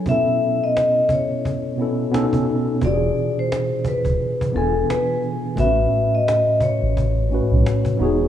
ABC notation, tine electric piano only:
X:1
M:4/4
L:1/8
Q:"Swing 16ths" 1/4=87
K:Alyd
V:1 name="Tine electric piano"
[B,,B,CEA]3 z2 [B,,B,CEA] [B,,B,CDA]2 | [B,,E,=D=F=G^G]3 z2 [E,B,DFg]2 z | [A,,A,B,CFB]3 z2 [A,,A,CFB]2 [E,B,DFG] |]